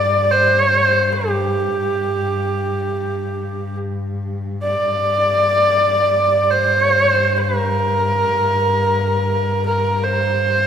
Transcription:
0.00 4.85 G2 soft
0.00 0.33 D5 medium
0.31 1.15 C5 medium
1.13 3.77 G4 medium
4.62 6.52 D5 medium
4.86 10.67 G2 medium
6.51 7.42 C5 medium
7.41 9.65 A#4 medium
9.66 10.05 A#4 medium
10.03 10.67 C5 medium

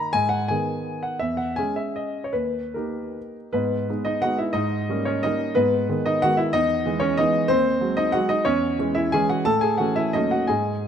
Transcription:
0.00 0.12 D#3 soft
0.00 0.12 A#3 soft
0.00 0.12 D#4 soft
0.00 0.14 A#5 medium
0.13 0.49 G#2 soft
0.13 0.31 G#5 loud
0.29 0.49 F#5 medium
0.48 1.17 D#3 soft
0.48 1.17 B3 soft
0.48 1.17 G#4 soft
0.48 1.03 G#5 medium
1.03 1.20 F#5 medium
1.19 1.57 E2 medium
1.19 1.38 E5 medium
1.37 1.57 F#5 medium
1.56 2.31 G#3 soft
1.56 2.31 C#4 soft
1.56 2.31 G#4 soft
1.56 1.76 G#5 medium
1.76 1.96 E5 medium
1.96 2.25 D#5 medium
2.24 2.34 C#5 medium
2.33 2.74 D#2 soft
2.33 2.75 B4 medium
2.74 3.50 A#3 soft
2.74 3.51 D#4 soft
2.74 3.51 G4 soft
2.74 3.35 A#4 soft
3.53 3.87 G#2 soft
3.53 3.88 B3 medium
3.53 4.05 B4 medium
3.90 4.20 G#3 soft
3.90 4.20 B3 soft
3.90 4.05 D#4 soft
4.05 4.22 D#4 medium
4.05 4.22 D#5 medium
4.22 4.52 G#3 soft
4.22 4.52 B3 soft
4.22 4.52 D#4 soft
4.22 4.38 F#4 medium
4.22 4.38 F#5 medium
4.38 4.54 E4 soft
4.38 4.54 E5 medium
4.53 4.87 G#2 medium
4.53 5.02 D#4 medium
4.53 5.05 D#5 medium
4.89 5.20 G3 soft
4.89 5.20 A#3 soft
4.89 5.05 C#4 soft
5.05 5.22 C#4 medium
5.05 5.23 C#5 medium
5.23 5.53 G3 soft
5.23 5.53 A#3 soft
5.23 5.53 C#4 soft
5.23 5.53 D#4 medium
5.23 5.55 D#5 medium
5.55 5.88 G#2 medium
5.55 5.89 B3 medium
5.55 6.06 B4 medium
5.89 6.19 D#3 soft
5.89 6.19 G#3 soft
5.89 6.20 B3 soft
6.06 6.21 D#4 medium
6.06 6.22 D#5 medium
6.22 6.51 D#3 soft
6.22 6.51 G#3 soft
6.22 6.52 B3 soft
6.22 6.38 F#4 medium
6.22 6.38 F#5 loud
6.37 6.53 E4 medium
6.37 6.53 E5 medium
6.53 6.85 E2 medium
6.53 6.99 D#4 medium
6.53 7.02 D#5 loud
6.86 7.15 E3 soft
6.86 7.16 G#3 soft
6.86 7.15 B3 soft
7.00 7.17 C#4 medium
7.00 7.17 C#5 medium
7.17 7.47 E3 soft
7.17 7.47 G#3 soft
7.17 7.47 B3 soft
7.17 7.47 D#4 medium
7.17 7.49 D#5 medium
7.48 7.81 D#2 medium
7.48 7.95 C4 medium
7.48 7.97 C5 loud
7.81 8.11 F#3 soft
7.81 8.11 G#3 soft
7.97 8.13 D#4 medium
7.97 8.14 D#5 medium
8.12 8.43 F#3 soft
8.12 8.43 G#3 soft
8.12 8.29 F#4 medium
8.12 8.29 F#5 medium
8.29 8.45 D#4 medium
8.29 8.45 D#5 medium
8.45 8.78 E2 medium
8.45 8.78 C#4 medium
8.45 8.95 C#5 medium
8.79 9.09 E3 soft
8.79 9.10 G#3 soft
8.79 9.10 C#4 soft
8.95 9.11 E4 medium
8.95 9.12 E5 medium
9.12 9.42 E3 soft
9.12 9.42 G#3 soft
9.12 9.42 C#4 soft
9.12 9.28 G#4 medium
9.12 9.29 G#5 medium
9.29 9.44 F#4 medium
9.29 9.45 F#5 medium
9.45 9.78 A2 medium
9.45 9.60 A4 medium
9.45 9.61 A5 loud
9.61 9.78 G#4 medium
9.61 9.78 G#5 medium
9.78 10.11 E3 soft
9.78 10.11 A3 soft
9.78 10.11 C#4 soft
9.78 9.95 F#4 medium
9.78 9.96 F#5 medium
9.96 10.13 E4 medium
9.96 10.14 E5 medium
10.13 10.48 D#2 soft
10.13 10.46 F#3 soft
10.13 10.46 A3 soft
10.13 10.47 C#4 soft
10.13 10.30 D#4 medium
10.13 10.31 D#5 medium
10.31 10.48 F#4 medium
10.31 10.49 F#5 medium
10.47 10.86 G#2 soft
10.47 10.88 G#4 medium
10.47 10.88 G#5 medium

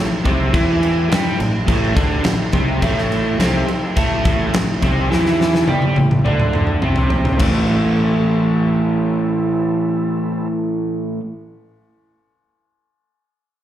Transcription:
0.00 0.23 A1 medium
0.00 0.20 A2 medium
0.00 0.50 C4 medium
0.00 0.50 E4 medium
0.00 0.52 A4 medium
0.24 0.52 C2 loud
0.24 0.52 C3 medium
0.24 0.53 C4 loud
0.24 kick loud
0.24 crash medium
0.51 1.07 E2 medium
0.51 1.10 E3 medium
0.51 2.79 A3 medium
0.51 2.79 C4 medium
0.51 2.79 E4 medium
0.51 1.10 E4 loud
0.51 kick loud
0.51 crash medium
0.83 crash medium
1.09 1.38 G2 loud
1.09 1.38 G3 medium
1.09 1.38 G4 loud
1.09 snare loud
1.09 crash medium
1.39 1.66 A1 medium
1.39 1.62 A2 medium
1.39 crash medium
1.67 1.95 A1 loud
1.67 1.94 A2 loud
1.67 1.95 A3 loud
1.67 kick loud
1.67 crash medium
1.95 2.23 D2 loud
1.95 2.24 D3 loud
1.95 2.24 D4 loud
1.95 kick loud
1.95 crash medium
2.24 2.51 A1 medium
2.24 2.48 A2 medium
2.24 snare loud
2.24 crash medium
2.52 2.81 C2 loud
2.52 2.81 C3 loud
2.52 2.82 C4 loud
2.52 kick loud
2.52 crash medium
2.81 3.36 A1 medium
2.81 3.38 A2 medium
2.81 5.08 A3 medium
2.81 3.39 A3 loud
2.81 5.08 C4 medium
2.81 5.09 E4 medium
2.81 kick loud
2.81 crash medium
2.98 snare soft
3.12 crash medium
3.39 3.66 C2 medium
3.39 3.67 C3 medium
3.39 3.68 C4 loud
3.39 snare loud
3.39 crash medium
3.68 muted fingered electric bass stroke soft
3.68 muted overdriven electric guitar stroke medium
3.68 crash medium
3.96 4.24 A2 loud
3.96 4.24 A3 loud
3.96 4.25 A4 loud
3.96 kick loud
3.96 crash medium
4.24 4.52 A1 loud
4.24 4.52 A2 medium
4.24 4.53 A3 medium
4.24 kick loud
4.24 crash medium
4.54 4.81 A1 medium
4.54 4.77 A2 medium
4.54 snare loud
4.54 crash medium
4.82 5.10 C2 loud
4.82 5.10 C3 medium
4.82 5.11 C4 loud
4.82 kick loud
4.82 crash medium
5.09 5.65 E2 medium
5.09 5.68 E3 loud
5.09 7.37 A3 medium
5.09 7.37 C4 medium
5.09 7.38 E4 medium
5.09 5.68 E4 loud
5.09 snare medium
5.26 snare soft
5.41 snare medium
5.55 snare medium
5.68 5.95 G2 medium
5.68 5.96 G3 medium
5.68 5.97 G4 loud
5.68 high tom medium
5.82 high tom medium
5.96 6.24 A1 medium
5.96 6.20 A2 medium
5.96 high tom medium
6.11 mid tom medium
6.24 6.79 D2 loud
6.24 6.81 D3 medium
6.24 6.82 D4 loud
6.24 mid tom medium
6.40 mid tom medium
6.53 mid tom loud
6.67 mid tom medium
6.81 7.36 C2 medium
6.81 7.38 C3 medium
6.81 7.39 C4 medium
6.81 mid tom loud
6.96 floor tom medium
7.10 floor tom loud
7.25 floor tom loud
7.38 11.16 A1 medium
7.38 11.19 A2 loud
7.38 11.20 E3 loud
7.38 11.21 A3 loud
7.38 10.48 C4 medium
7.38 10.48 A4 medium
7.38 kick loud
7.38 crash medium
7.42 10.48 E4 medium

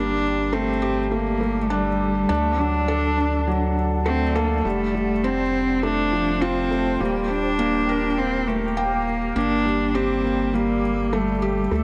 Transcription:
0.00 2.26 G1 medium
0.00 0.22 G3 medium
0.00 2.30 G3 medium
0.00 0.55 D4 loud
0.00 0.89 G5 medium
0.10 2.30 G4 medium
0.26 3.24 A4 medium
0.53 0.70 A3 loud
0.53 1.12 C4 loud
0.82 0.99 G4 loud
1.12 1.39 A3 medium
1.12 1.73 A#3 loud
1.41 1.58 A3 medium
1.70 2.32 G3 loud
1.70 1.87 D4 loud
2.29 4.62 D2 medium
2.29 2.61 A3 medium
2.29 2.57 D4 loud
2.29 5.58 D4 medium
2.59 2.87 F#3 medium
2.59 3.77 D4 loud
2.75 5.59 D5 medium
2.88 3.16 A4 loud
3.03 4.65 F#5 medium
3.18 3.46 D4 medium
3.26 7.00 A5 medium
3.47 3.75 F#3 medium
4.06 4.23 A3 loud
4.06 4.37 C4 loud
4.35 4.67 A#3 loud
4.35 4.52 A4 loud
4.65 6.97 F1 medium
4.65 4.93 G3 medium
4.65 5.25 A3 loud
4.65 7.94 F4 medium
4.77 7.94 C5 medium
4.95 5.11 G3 medium
5.14 10.30 G5 medium
5.24 5.84 C4 loud
5.24 5.41 C4 loud
5.83 6.11 A3 loud
5.83 6.43 D4 loud
6.12 6.40 F3 medium
6.41 7.02 C4 loud
6.41 6.69 F4 loud
6.71 6.99 A3 medium
7.00 9.32 D#1 medium
7.00 7.28 G3 medium
7.00 7.31 A#3 loud
7.00 9.36 G4 medium
7.28 8.20 D4 loud
7.28 9.36 A#4 medium
7.59 7.76 A#3 loud
7.89 8.05 A#4 loud
7.89 9.36 A#5 medium
8.18 8.46 A#3 medium
8.18 8.49 C4 loud
8.47 8.78 A3 loud
8.47 8.64 A#4 medium
8.77 9.38 A#3 loud
8.77 9.05 G5 loud
9.35 11.68 G1 medium
9.35 11.71 G3 medium
9.35 9.64 A#3 loud
9.35 9.96 D4 loud
9.66 9.93 G3 medium
9.77 11.71 G4 medium
9.95 10.56 C4 loud
9.95 10.23 G4 loud
10.04 11.84 A4 medium
10.24 10.52 A#3 medium
10.54 10.81 G3 medium
10.54 11.14 A#3 loud
11.12 11.73 G3 medium
11.12 11.29 A3 loud
11.42 11.58 G4 loud
11.71 11.84 D2 medium
11.71 11.84 A3 loud
11.71 11.84 A3 medium

